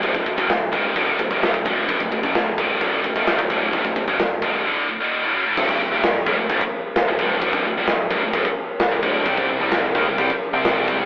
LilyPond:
<<
  \new Staff \with { instrumentName = "Distorted electric guitar" } { \clef bass \time 4/4 \tempo 4 = 130 <d, a,>16 <d, a,>16 <d, a,>16 <fis, cis>16 <d, a,>8 <ees, bes, ees>8 <d, a, d>8 <d, a,>16 <ees, bes, ees>8 <d, a,>16 <d, a, d>8 | <d, a,>16 <d, a,>16 <d, a,>16 <fis, cis>16 <d, a,>8 <ees, bes, ees>8 <d, a, d>8 <d, a,>16 <ees, bes, ees>8 <d, a,>16 <d, a, d>8 | <d, a,>16 <d, a,>16 <d, a,>16 <fis, cis>16 <d, a,>8 <ees, bes, ees>8 <d, a, d>8 <d, a,>16 <ees, bes, ees>8 <d, a,>16 <fis, cis>16 <d, a,>16 | <d, a, d>8 <d, a,>16 <ees, bes,>16 <d, a,>8 <fis, cis>16 <d, a,>16 <d, a,>16 r4 <d, a,>16 <d, a, d>8 |
<d, a, d>8 <d, a,>16 <ees, bes,>16 <d, a,>8 <fis, cis>16 <d, a,>16 <d, a,>16 r4 <d, a,>16 <d, a, d>8 | <c g c'>8 <c g>16 <c g>16 <c g>8 <ees bes>16 <c g>16 <c g>16 r8 <c g c'>8 <c g c'>8. | }
  \new Staff \with { instrumentName = "Picked electric bass" } { \clef bass \time 4/4 d,,16 d,,16 d,,16 fis,,16 d,,8 ees,,8 d,,8 d,,16 ees,,8 d,,16 d,,8 | d,,16 d,,16 d,,16 fis,,16 d,,8 ees,,8 d,,8 d,,16 ees,,8 d,,16 d,,8 | d,,16 d,,16 d,,16 fis,,16 d,,8 ees,,8 r2 | d,,8 d,,16 ees,,16 d,,8 fis,,16 d,,16 d,,16 r4 d,,16 d,,8 |
d,,8 d,,16 ees,,16 d,,8 fis,,16 d,,16 d,,16 r4 d,,16 d,,8 | c,8 c,16 c,16 c,8 ees,16 c,16 c,16 r8 c,8 c,8. | }
  \new DrumStaff \with { instrumentName = "Drums" } \drummode { \time 4/4 <hho bd>16 bd16 bd16 bd16 <hho sn>8 bd8 <hho bd>8 bd16 bd16 <hho sn>16 bd16 bd8 | <hho bd>16 bd16 bd16 bd16 <hho sn>8 bd8 <hho bd>8 bd16 bd16 <hho sn>16 bd16 bd8 | <hho bd>16 bd16 bd16 bd16 <hho sn>8 bd8 r4 r4 | <cymc bd>16 bd8. <cymc sn>8 bd8 <cymc bd>16 bd8. <cymc sn>8 bd8 |
<cymc bd>16 bd8. <cymc sn>8 bd8 <cymc bd>16 bd8. <cymc sn>8 bd8 | <cymc bd>16 bd8. <cymc sn>8 bd8 <cymc bd>16 bd8. <cymc sn>8 bd8 | }
>>